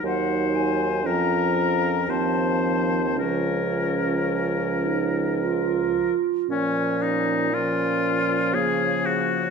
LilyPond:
<<
  \new Staff \with { instrumentName = "Flute" } { \time 3/4 \key bes \minor \tempo 4 = 58 ges''8 aes''8 bes''4 a''4 | des''2 r4 | des''4 des''2 | }
  \new Staff \with { instrumentName = "Oboe" } { \time 3/4 \key bes \minor c''4 bes'4 c''4 | bes'2~ bes'8 r8 | des'8 ees'8 f'4 aes'8 ges'8 | }
  \new Staff \with { instrumentName = "Clarinet" } { \time 3/4 \key bes \minor ees'4 des'4 c'4 | des'4 des'8 ees'8 f'4 | des'4 des'4 bes4 | }
  \new Staff \with { instrumentName = "French horn" } { \clef bass \time 3/4 \key bes \minor ges4 f4 f4 | f2~ f8 r8 | f4 f2 | }
  \new Staff \with { instrumentName = "Bassoon" } { \clef bass \time 3/4 \key bes \minor ees,4 f,4 ees,4 | des,2~ des,8 r8 | bes,2 des4 | }
>>